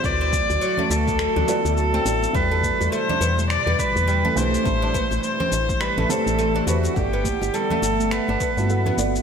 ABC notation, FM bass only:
X:1
M:4/4
L:1/16
Q:"Swing 16ths" 1/4=104
K:Ador
V:1 name="FM bass" clef=bass
D,,2 z D,, z2 D,,2 z D,, z D,,2 z A,,, z | E,,2 z E,, z2 E,,2 z E,, z E,,2 z B,,, z | A,,,2 z A,,, z2 A,,,2 z A,,, z A,,,2 z E,, z | G,,,2 z G,,, z2 G,,,2 z G,,, z G,,2 z G,,, z |]